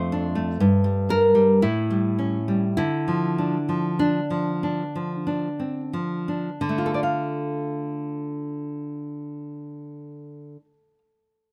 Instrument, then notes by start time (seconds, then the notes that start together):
nylon-string guitar
Already playing: F2 A3 C5
0.12 D4
0.35 A3
0.60 G2
0.84 G3
1.09 D4 A#4
1.35 G3
1.62 A2 E4
1.90 G3
2.19 C#4
2.48 G3
2.77 D3 E4
3.08 F3
3.38 D4
3.69 F3
3.99 D4
4.30 F3
4.63 D4
4.95 F3
5.27 D4
5.60 C4
5.93 F3
6.28 D4
6.61 D3
6.69 A3
6.78 F4
6.86 A4
6.94 D5
7.03 F5